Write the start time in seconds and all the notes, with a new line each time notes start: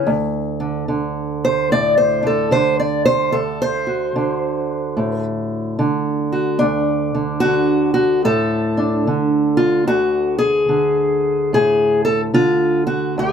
0.07 D2
0.60 D3
0.88 D3
1.45 C5
1.71 A2 D5
1.98 C5
2.23 D3 A4
2.51 D3 C5
2.80 D5
3.05 C5
3.32 D2 A4
3.62 C5
3.87 F#4
4.16 D3
4.97 A2
5.79 D3
6.32 F#4
6.59 D2 D4
7.15 D3
7.40 F#4
7.44 D3
7.94 F#4
8.25 A2 A4
8.77 D4
9.07 D3
9.57 F4
9.87 D2 F#4
10.38 G#4
10.69 D3
11.53 A2 G#4
12.05 A4
12.34 D3 F4
12.87 F#4
13.18 D2 A4